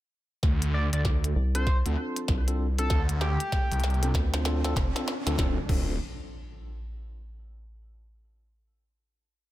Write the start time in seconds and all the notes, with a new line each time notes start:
0.43 D2, kick, snare, riser
0.62 closed hi-hat
0.74 D5
0.93 D2 D5, closed hi-hat
1.05 kick, snare
1.24 closed hi-hat
1.36 C2
1.55 C4 D4 F4 A4 C5, closed hi-hat
1.67 kick, snare
1.86 D2 C4 D4 F4 A4, closed hi-hat
2.16 closed hi-hat
2.28 C2, kick, snare
2.48 C4 D4 F4 A4, closed hi-hat
2.79 C4 D4 F4 A4, closed hi-hat
2.90 D2, kick, snare
3.09 closed hi-hat
3.21 G4, snare
3.40 closed hi-hat
3.52 kick, snare
3.71 C2, closed hi-hat
3.73 closed hi-hat
3.80 snare, closed hi-hat
3.84 closed hi-hat
3.90 closed hi-hat
3.94 closed hi-hat
4.03 C4 D4 F4 A4, closed hi-hat
4.14 D2, kick, snare
4.33 C4 D4 F4 C5, snare, closed hi-hat
4.45 C4 D4 F4 A4, snare
4.64 C4 D4 F4 A4, snare, closed hi-hat
4.76 F1, kick, snare
4.95 C4 D4 F4 A4, snare, closed hi-hat
5.08 snare
5.26 D2 C4 D4 F4 A4, snare, closed hi-hat
5.38 D1 C4 D4 F4 A4, kick, snare, impact
5.69 D1 C4 D4 F4 A4, kick, crash